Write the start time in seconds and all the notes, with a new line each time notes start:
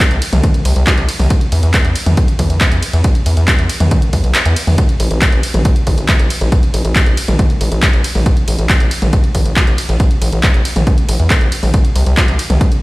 0.00 kick, clap, closed hi-hat
0.11 C2, closed hi-hat
0.22 open hi-hat, ride
0.33 C2, closed hi-hat, mid tom
0.44 kick, closed hi-hat, mid tom
0.54 closed hi-hat
0.65 C2, open hi-hat, ride
0.76 C2, closed hi-hat
0.87 kick, clap, closed hi-hat
0.98 C2, closed hi-hat
1.09 open hi-hat, ride
1.19 C2, open hi-hat, mid tom
1.30 kick, closed hi-hat
1.41 closed hi-hat
1.52 E2, open hi-hat, ride
1.63 E2, closed hi-hat
1.74 kick, clap, closed hi-hat
1.85 E2, closed hi-hat
1.96 open hi-hat, ride
2.06 E2, closed hi-hat, mid tom
2.17 kick, closed hi-hat
2.28 closed hi-hat
2.39 E2, kick, open hi-hat, mid tom, ride
2.50 E2, closed hi-hat
2.61 kick, clap, closed hi-hat
2.72 E2, closed hi-hat
2.83 open hi-hat, ride
2.93 E2, closed hi-hat
3.04 kick, closed hi-hat
3.15 closed hi-hat
3.26 E2, open hi-hat, ride
3.37 E2, closed hi-hat
3.48 kick, clap, closed hi-hat
3.59 E2, closed hi-hat
3.69 open hi-hat, ride
3.80 E2, closed hi-hat, mid tom
3.91 kick, closed hi-hat, mid tom
4.02 closed hi-hat
4.13 E2, kick, open hi-hat, ride
4.24 B1, closed hi-hat
4.35 clap, closed hi-hat
4.46 E2, closed hi-hat
4.56 open hi-hat, ride
4.67 E2, open hi-hat, mid tom
4.78 kick, closed hi-hat
4.89 closed hi-hat
5.00 A1, open hi-hat, ride
5.11 A1, closed hi-hat
5.22 kick, clap, closed hi-hat
5.32 A1, closed hi-hat
5.43 open hi-hat, ride
5.54 A1, closed hi-hat, mid tom
5.65 kick, closed hi-hat
5.76 closed hi-hat
5.87 A1, kick, open hi-hat, mid tom, ride
5.98 A1, closed hi-hat
6.09 kick, clap, closed hi-hat
6.19 A1, closed hi-hat
6.30 open hi-hat, ride
6.41 A1, closed hi-hat
6.52 kick, closed hi-hat
6.63 closed hi-hat
6.74 A1, open hi-hat, ride
6.85 A1, closed hi-hat
6.96 kick, clap, closed hi-hat
7.06 A1, closed hi-hat
7.17 open hi-hat, ride
7.28 A1, closed hi-hat, mid tom
7.39 kick, closed hi-hat, mid tom
7.50 closed hi-hat
7.61 A1, open hi-hat, ride
7.72 A1, closed hi-hat
7.83 kick, clap, closed hi-hat
7.93 A1, closed hi-hat
8.04 open hi-hat, ride
8.15 A1, open hi-hat, mid tom
8.26 kick, closed hi-hat
8.37 closed hi-hat
8.48 A1, open hi-hat, ride
8.59 A1, closed hi-hat
8.69 kick, clap, closed hi-hat
8.80 A1, closed hi-hat
8.91 open hi-hat, ride
9.02 A1, closed hi-hat, mid tom
9.13 kick, closed hi-hat
9.24 closed hi-hat
9.35 A1, kick, open hi-hat, mid tom, ride
9.46 A1, closed hi-hat
9.56 kick, clap, closed hi-hat
9.67 A1, closed hi-hat
9.78 open hi-hat, ride
9.89 A1, closed hi-hat
10.00 kick, closed hi-hat
10.11 closed hi-hat
10.22 A1, open hi-hat, ride
10.33 A1, closed hi-hat
10.43 kick, clap, closed hi-hat
10.54 A1, closed hi-hat
10.65 open hi-hat, ride
10.76 A1, closed hi-hat, mid tom
10.87 kick, closed hi-hat, mid tom
10.98 closed hi-hat
11.09 A1, open hi-hat, ride
11.19 E2, closed hi-hat
11.30 kick, clap, closed hi-hat
11.41 A1, closed hi-hat
11.52 open hi-hat, ride
11.63 A1, open hi-hat, mid tom
11.74 kick, closed hi-hat
11.85 closed hi-hat
11.96 C2, open hi-hat, ride
12.06 C2, closed hi-hat
12.17 kick, clap, closed hi-hat
12.28 C2, closed hi-hat
12.39 open hi-hat, ride
12.50 C2, closed hi-hat, mid tom
12.61 kick, closed hi-hat
12.72 closed hi-hat